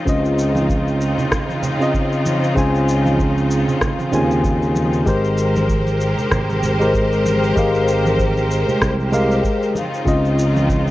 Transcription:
Already playing: C#3 C4 D#4 F4
0.05 C#2 C#3 C4 F4 D#5, kick, cabasa
0.25 cabasa
0.39 cabasa
0.55 high conga, cabasa
0.69 kick, cabasa
0.88 cabasa
1.01 cabasa
1.18 low conga, cabasa
1.31 kick, cross-stick, low conga, cabasa
1.50 high conga, cabasa
1.63 low conga, cabasa
1.79 C#3 C4 F4 D#5, cabasa
1.94 kick, cabasa
2.13 cabasa
2.26 high conga, cabasa
2.44 cabasa
2.55 C#2 C#3 C4 F4 G#5, kick, cabasa
2.75 cabasa
2.88 cabasa
3.05 high conga, cabasa
3.19 kick, cabasa
3.38 cabasa
3.51 cabasa
3.68 low conga, cabasa
3.81 kick, cross-stick, low conga, cabasa
3.99 high conga, cabasa
4.11 D#2 C#3 C4 F4 G#5, low conga, cabasa
4.31 cabasa
4.44 kick, cabasa
4.62 cabasa
4.76 high conga, cabasa
4.93 cabasa
5.05 G#1 G#3 G4 A#4 C5, kick, cabasa
5.24 cabasa
5.38 cabasa
5.56 high conga, cabasa
5.69 kick, cabasa
5.87 muted conga, cabasa
6.01 cabasa
6.18 low conga, cabasa
6.32 G#1, kick, cross-stick, low conga, cabasa
6.50 high conga, cabasa
6.63 low conga, cabasa
6.79 G#3 G4 A#4 C5, muted conga, cabasa
6.94 kick, cabasa
7.12 cabasa
7.25 high conga, cabasa
7.44 cabasa
7.55 G#1 G#3 G4 A#4 F5, kick, cabasa
7.75 cabasa
7.88 cabasa
8.05 muted conga, high conga, cabasa
8.19 kick, cabasa
8.37 muted conga, cabasa
8.51 cabasa
8.69 low conga, cabasa
8.81 C2, kick, cross-stick, low conga, cabasa
8.99 high conga, cabasa
9.12 G#3 G4 A#4 F5, low conga, cabasa
9.31 cabasa
9.44 kick, cabasa
9.63 cabasa
9.75 C#3 C4 D#4 F4, muted conga, high conga, cabasa
9.94 cabasa
10.05 C#2 C#3 C4 F4 D#5, kick, cabasa
10.25 cabasa
10.39 cabasa
10.56 high conga, cabasa
10.69 kick, cabasa
10.87 muted conga

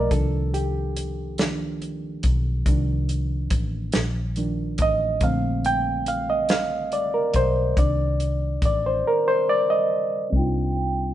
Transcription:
Already playing: F3 A3 A#3 A#4 D5 D#5 F5 G5
0.11 C2 D#3 F3 A#3 D4 A4, kick, closed hi-hat
0.54 G4, closed hi-hat
0.96 closed hi-hat
1.38 D#3 F3 A#3 D4, snare, closed hi-hat
1.82 closed hi-hat
2.23 B1, kick, closed hi-hat
2.66 C2 D#3 F3 A#3 D4, kick, closed hi-hat
3.09 closed hi-hat
3.50 A1, kick, closed hi-hat
3.92 A#1, snare, closed hi-hat
4.36 D#3 F3 A#3 D4, closed hi-hat
4.78 A1, kick, closed hi-hat
4.82 D#5
5.21 A#1 D3 A3 C4 F5, kick, closed hi-hat
5.65 G5, closed hi-hat
6.06 F5, closed hi-hat
6.30 D#5
6.49 F5, snare, closed hi-hat
6.92 D5, closed hi-hat
7.14 A#4
7.34 B1 C5, kick, closed hi-hat
7.77 C2 D#3 A#3 D4 D5, kick, closed hi-hat
8.20 closed hi-hat
8.62 A1 D5, kick, closed hi-hat
8.86 C5
9.07 A#4
9.28 C5
9.49 D5
9.70 D#5
10.30 C2 G3 A#3 C4, kick, closed hi-hat
10.35 D4 D#4 F4 G5
10.76 closed hi-hat

